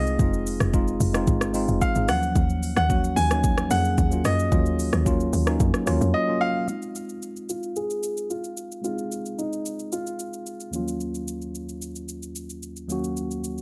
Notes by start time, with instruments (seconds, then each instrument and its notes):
Already playing: log drum bass C2, tine electric piano G#3 C4 D#4 F4 G#4, grand piano D#5
0.07 shaker
0.18 log drum bass F1, tine electric piano G#3 C4 D#4 F4, kick, shaker
0.34 shaker
0.47 open hi-hat, shaker
0.60 log drum bass F1, cross-stick, shaker
0.72 tine electric piano G#3 C4 D#4 F4, kick, shaker
0.88 shaker
1.00 log drum bass F1, open hi-hat, shaker
1.13 tine electric piano G#3 C4 D#4 F4, cross-stick, shaker
1.27 log drum bass G#1, kick, shaker
1.41 cross-stick, shaker
1.53 tine electric piano G#3 C4 D#4 F4, open hi-hat, shaker
1.68 log drum bass F1, shaker
1.81 grand piano F5, kick, shaker
1.95 log drum bass G#1, tine electric piano G#3 C4 D#4 G#4, shaker
2.07 log drum bass D#2, tine electric piano F3 F#3 A#3 C#4, grand piano F#5, cross-stick, open hi-hat, shaker
2.23 shaker
2.35 log drum bass D#2, kick, shaker
2.50 shaker
2.63 open hi-hat, shaker
2.77 log drum bass D#2, grand piano F#5, cross-stick, shaker
2.89 tine electric piano F#3 A#3 C#4 F#4, kick, shaker
3.04 shaker
3.16 log drum bass D#2, grand piano G#5, open hi-hat, shaker
3.30 tine electric piano F#3 A#3 C#4 D#4, cross-stick, shaker
3.44 kick, shaker
3.58 cross-stick, shaker
3.70 log drum bass F2, tine electric piano F#3 A#3 C#4 G#4, grand piano F#5, open hi-hat, shaker
3.85 shaker
3.98 log drum bass D#2, kick, shaker
4.11 tine electric piano F#3 A#3 C#4 F4, shaker
4.25 log drum bass F#2, grand piano D#5, cross-stick, open hi-hat, shaker
4.39 shaker
4.51 log drum bass D#2, tine electric piano F#3 A#3 C#4 F4, kick, shaker
4.66 shaker
4.79 open hi-hat, shaker
4.93 log drum bass D#2, cross-stick, shaker
5.05 tine electric piano F#3 A#3 C#4 F4, kick, shaker
5.20 shaker
5.33 log drum bass D#2, open hi-hat, shaker
5.46 tine electric piano F#3 A#3 C#4 D#4, cross-stick, shaker
5.60 log drum bass F2, kick, shaker
5.74 cross-stick, shaker
5.86 log drum bass D#2, tine electric piano F#3 A#3 C#4 F4, cross-stick, open hi-hat, shaker
6.01 log drum bass F2, shaker
6.14 grand piano D#5
6.27 tine electric piano F#3 A#3 C#4 F4
6.41 grand piano F5
6.66 tine electric piano G#3 C4 D#4, shaker
6.70 tine electric piano F4
6.82 shaker
6.95 shaker
7.09 shaker
7.22 shaker
7.36 shaker
7.49 grand piano F4, shaker
7.63 shaker
7.76 grand piano G#4, shaker
7.90 shaker
8.03 shaker
8.17 shaker
8.30 grand piano F4, shaker
8.44 shaker
8.57 shaker
8.72 shaker
8.82 tine electric piano G#3 C4 D#4, grand piano F4, shaker
8.87 tine electric piano G#4
8.98 shaker
9.12 shaker
9.26 shaker
9.38 grand piano D#4, shaker
9.53 shaker
9.66 shaker
9.79 shaker
9.92 grand piano F4, shaker
10.07 shaker
10.19 shaker
10.33 shaker
10.46 shaker
10.60 shaker
10.71 tine electric piano D#2 F3 A#3 C#4, shaker
10.76 tine electric piano F#3 F4
10.88 shaker
11.00 shaker
11.15 shaker
11.28 shaker
11.42 shaker
11.55 shaker
11.69 shaker
11.82 shaker
11.95 shaker
12.08 shaker
12.23 shaker
12.35 shaker
12.50 shaker
12.63 shaker
12.76 shaker
12.88 tine electric piano D#2 F#3 A#3 C#4, shaker
12.92 tine electric piano F#4
13.04 shaker
13.17 shaker
13.31 shaker
13.44 shaker
13.58 shaker